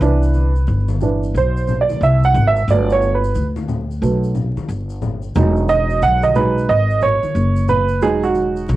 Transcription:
0.00 0.65 C2 loud
0.00 0.50 E3 medium
0.00 0.50 B3 soft
0.00 0.50 D4 medium
0.00 0.86 B4 medium
0.00 shaker medium
0.22 shaker soft
0.34 high conga soft
0.34 shaker soft
0.56 shaker soft
0.67 1.31 G1 medium
0.67 high conga soft
0.67 shaker medium
0.88 high conga medium
0.88 shaker soft
1.01 1.32 E3 medium
1.01 1.32 B3 soft
1.01 1.32 D4 soft
1.01 low conga medium
1.01 shaker soft
1.23 shaker soft
1.34 1.98 B1 medium
1.34 1.78 C5 medium
1.34 shaker medium
1.57 shaker soft
1.68 low conga medium
1.68 shaker soft
1.81 2.01 D5 medium
1.89 high conga medium
1.89 shaker soft
2.01 2.33 C2 medium
2.01 2.23 E5 medium
2.01 shaker medium
2.23 2.45 F#5 medium
2.23 shaker soft
2.34 2.66 G#1 medium
2.34 low conga medium
2.34 shaker soft
2.47 2.67 E5 medium
2.56 shaker soft
2.68 3.31 G1 loud
2.68 3.17 F#3 soft
2.68 3.17 A3 soft
2.68 3.18 B3 medium
2.68 2.92 D5 medium
2.68 shaker medium
2.90 3.14 C#5 medium
2.90 shaker soft
3.02 high conga soft
3.02 shaker soft
3.14 3.45 B4 medium
3.24 shaker medium
3.35 3.98 D2 medium
3.35 high conga soft
3.35 shaker medium
3.56 high conga medium
3.56 shaker soft
3.68 low conga medium
3.68 shaker soft
3.91 shaker soft
4.02 4.54 B1 medium
4.02 4.32 F#3 soft
4.02 4.32 A3 soft
4.02 4.32 B3 soft
4.02 shaker medium
4.24 shaker soft
4.35 low conga medium
4.35 shaker soft
4.57 muted upright bass stroke soft
4.57 high conga medium
4.57 shaker soft
4.68 5.32 G1 medium
4.68 shaker medium
4.90 shaker soft
5.02 low conga medium
5.02 shaker soft
5.22 shaker soft
5.35 5.99 E1 loud
5.35 6.34 F#3 medium
5.35 6.34 G#3 soft
5.35 6.35 D#4 medium
5.35 shaker medium
5.56 shaker soft
5.69 6.03 D#5 loud
5.69 high conga soft
5.69 shaker soft
5.90 shaker soft
6.02 6.65 B1 medium
6.02 6.22 F#5 loud
6.02 high conga soft
6.02 shaker medium
6.22 6.36 D#5 medium
6.22 high conga medium
6.22 shaker soft
6.35 6.65 F#3 soft
6.35 6.65 G#3 soft
6.35 6.66 D#4 soft
6.35 6.70 B4 medium
6.35 low conga medium
6.35 shaker soft
6.58 shaker soft
6.69 7.21 G#1 medium
6.69 7.03 D#5 loud
6.69 shaker medium
6.90 shaker soft
7.01 7.65 C#5 loud
7.01 low conga medium
7.01 shaker soft
7.23 muted upright bass stroke soft
7.23 high conga medium
7.23 shaker soft
7.35 8.02 F#1 medium
7.35 shaker medium
7.56 shaker medium
7.68 8.03 B4 medium
7.68 low conga medium
7.68 shaker medium
7.89 shaker soft
8.02 8.65 E1 loud
8.02 8.76 F#3 medium
8.02 8.76 G#3 medium
8.02 8.76 D#4 medium
8.02 8.24 G#4 medium
8.02 shaker medium
8.23 8.76 F#4 medium
8.23 shaker medium
8.35 high conga soft
8.35 shaker soft
8.56 shaker soft
8.68 8.76 B1 loud
8.68 high conga soft
8.68 shaker medium

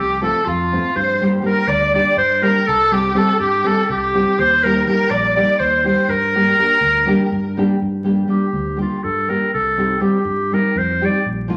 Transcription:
0.00 0.26 C2 medium
0.00 0.21 G4 medium
0.00 0.22 G4 medium
0.21 0.39 F3 medium
0.21 0.39 A3 medium
0.21 0.39 C4 medium
0.21 0.39 F4 medium
0.21 0.47 A4 medium
0.21 0.49 A4 medium
0.45 0.77 F2 medium
0.45 0.98 F4 medium
0.45 0.99 F4 medium
0.72 0.89 F3 medium
0.72 0.89 A3 medium
0.72 0.89 C4 medium
0.72 0.90 F4 medium
0.96 1.39 G2 medium
0.96 1.22 C5 medium
1.21 1.38 G3 medium
1.21 1.38 A#3 medium
1.21 1.38 D4 medium
1.21 1.39 G4 medium
1.42 1.60 G3 medium
1.42 1.60 A#3 medium
1.42 1.61 D4 medium
1.42 1.61 G4 medium
1.42 1.69 A#4 medium
1.47 1.71 A#4 medium
1.67 1.97 D2 medium
1.67 1.94 D5 loud
1.67 1.94 D5 medium
1.93 2.10 G3 medium
1.93 2.11 A#3 medium
1.93 2.11 D4 medium
1.93 2.12 G4 medium
1.93 2.16 D5 medium
1.93 2.17 D5 loud
2.17 2.47 G2 medium
2.17 2.44 C5 loud
2.17 2.47 C5 medium
2.42 2.60 G3 medium
2.42 2.60 A#3 medium
2.42 2.60 D4 medium
2.42 2.60 G4 medium
2.42 2.68 A#4 medium
2.42 2.70 A#4 medium
2.67 3.11 C2 loud
2.67 2.94 A4 loud
2.67 2.95 A4 medium
2.91 3.08 G3 medium
2.91 3.09 C4 medium
2.91 3.09 D#4 medium
2.91 3.19 G4 medium
2.91 3.09 G4 medium
2.91 3.20 G4 medium
3.14 3.31 G3 medium
3.14 3.32 C4 medium
3.14 3.32 D#4 medium
3.14 3.32 G4 medium
3.14 3.39 A4 medium
3.18 3.40 A4 medium
3.39 3.70 G2 medium
3.39 3.68 G4 loud
3.39 3.68 G4 medium
3.64 3.81 G3 medium
3.64 3.81 C4 medium
3.64 3.82 D#4 medium
3.64 3.82 G4 medium
3.64 3.89 A4 medium
3.64 3.90 A4 medium
3.90 4.19 C2 loud
3.90 4.40 G4 medium
3.90 4.41 G4 medium
4.14 4.31 G3 medium
4.14 4.32 C4 medium
4.14 4.32 D#4 medium
4.14 4.32 G4 medium
4.39 4.82 D#2 loud
4.39 4.67 C5 medium
4.39 4.65 C5 loud
4.64 4.81 G3 medium
4.64 4.81 A#3 medium
4.64 4.81 D#4 medium
4.64 4.82 G4 medium
4.64 4.87 A#4 medium
4.64 4.86 A#4 medium
4.87 5.04 G3 medium
4.87 5.04 A#3 medium
4.87 5.04 D#4 medium
4.87 5.05 G4 medium
4.87 5.12 A#4 medium
5.10 5.41 A#1 medium
5.10 5.35 D5 loud
5.10 5.35 D5 medium
5.36 5.53 G3 medium
5.36 5.53 A#3 medium
5.36 5.53 D#4 medium
5.36 5.53 G4 medium
5.36 5.61 D5 medium
5.59 5.90 D#2 medium
5.59 5.86 C5 medium
5.59 5.86 C5 loud
5.84 6.02 G3 medium
5.84 6.02 A#3 medium
5.84 6.03 D#4 medium
5.84 6.03 G4 medium
5.84 6.13 C5 medium
5.84 6.11 C5 medium
6.09 6.52 G2 loud
6.09 7.58 A#4 loud
6.09 7.59 A#4 medium
6.35 6.52 G3 medium
6.35 6.52 A#3 medium
6.35 6.52 D4 medium
6.35 6.52 G4 medium
6.57 6.74 G3 medium
6.57 6.75 A#3 medium
6.57 6.75 D4 medium
6.57 6.75 G4 medium
6.81 7.11 D2 medium
7.06 7.24 G3 medium
7.06 7.24 A#3 medium
7.06 7.24 D4 medium
7.06 7.25 G4 medium
7.32 7.62 G2 medium
7.57 7.74 G3 medium
7.57 7.75 A#3 medium
7.57 7.75 D4 medium
7.57 7.75 G4 medium
7.82 8.25 G2 medium
8.04 8.22 G3 medium
8.04 8.22 A#3 medium
8.04 8.22 D4 medium
8.04 8.23 G4 medium
8.27 8.45 G3 medium
8.27 8.46 A#3 medium
8.27 8.46 D4 medium
8.27 8.46 G4 medium
8.27 8.76 G4 medium
8.53 8.83 D2 medium
8.76 8.95 G3 medium
8.76 8.95 A#3 medium
8.76 8.96 D4 soft
8.76 8.96 G4 medium
8.81 9.05 F4 medium
9.04 9.34 G2 medium
9.04 9.30 A4 medium
9.28 9.46 G3 medium
9.28 9.46 A#3 medium
9.28 9.46 D4 soft
9.28 9.47 G4 medium
9.28 9.53 A#4 medium
9.54 9.97 C2 medium
9.54 10.03 A4 medium
9.77 9.94 G3 medium
9.77 9.95 C4 medium
9.77 9.95 D#4 medium
9.77 9.95 G4 medium
10.00 10.17 G3 medium
10.00 10.18 C4 medium
10.00 10.18 D#4 medium
10.00 10.18 G4 medium
10.00 10.56 G4 medium
10.25 10.55 G2 medium
10.51 10.68 G3 medium
10.51 10.69 C4 medium
10.51 10.69 D#4 medium
10.51 10.70 G4 medium
10.51 10.79 A#4 medium
10.75 11.05 F2 medium
10.75 11.07 C5 medium
11.01 11.18 G3 medium
11.01 11.18 C4 medium
11.01 11.18 D#4 medium
11.01 11.19 G4 medium
11.06 11.27 D5 medium
11.26 11.57 A#1 medium
11.48 11.57 F3 medium
11.48 11.57 A#3 medium
11.48 11.57 D4 medium
11.48 11.57 F4 medium

